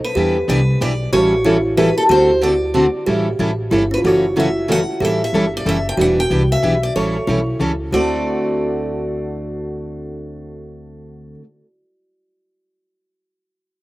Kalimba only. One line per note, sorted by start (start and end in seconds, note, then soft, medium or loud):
0.15 1.15 G4 medium
1.13 1.43 F#4 medium
1.45 1.78 E4 medium
1.77 2.11 G4 medium
2.09 3.09 F#4 medium
3.07 3.73 G4 medium
3.71 3.90 E4 medium
3.91 4.03 C#4 medium
3.98 4.03 F4 medium
4.05 4.38 F#4 medium
4.37 5.03 E4 medium
5.00 6.01 G4 medium
5.97 6.91 F#4 medium
6.96 7.29 A4 medium
7.27 7.76 E4 medium
7.93 11.33 F#4 medium